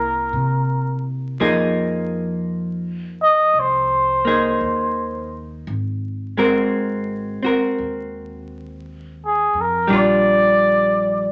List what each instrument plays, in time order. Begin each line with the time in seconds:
Already playing: upright bass C2, hollow-body jazz guitar A#3 E4 G#4, muted trumpet A#4
0.33 upright bass C3
1.40 upright bass F2, hollow-body jazz guitar F3 A#3 D#4 G#4
3.23 muted trumpet D#5
3.54 upright bass C2
3.60 muted trumpet C5
4.25 hollow-body jazz guitar A#3 D#4 G#4
4.61 upright bass D#2
5.67 upright bass G#1
6.37 hollow-body jazz guitar G#3 C4 F#4 A#4
7.43 hollow-body jazz guitar C4 F#4 A#4, muted upright bass stroke
7.78 upright bass D#2
9.26 muted trumpet G#4
9.54 upright bass F2
9.61 muted trumpet A#4
9.88 upright bass A#1, hollow-body jazz guitar G3 D4
9.93 hollow-body jazz guitar F4, muted trumpet D5